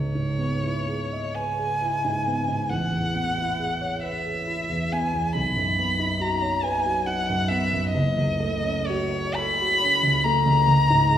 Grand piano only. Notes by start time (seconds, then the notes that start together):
Already playing: C#2
0.15 G#2
0.38 B3
0.63 E4
0.88 G#4
1.13 D#5
1.36 B4
1.59 G#4
1.81 E4
2.05 G#2
2.27 B3
2.48 G#2
2.70 A1
2.92 E2
3.14 B3
3.37 E4
3.59 G#4
3.81 C#5
4.03 B4
4.25 G#4
4.47 E4
4.69 E2
4.92 B3
5.13 E2
5.35 B1
5.56 F#2
5.78 B3
5.99 D#4
6.20 F#4
6.41 C#5
6.63 B4
6.85 F#4
7.07 D#4
7.29 F#2
7.50 B3
7.73 F#2
7.94 F#1
8.17 C#2
8.40 A3
8.64 C#4
8.89 F#4
9.13 C#5
9.38 A4
9.61 F#4
9.82 C#4
10.03 C#2
10.25 A3
10.46 C#2
10.68 C#2
10.90 G#2
11.10 G#3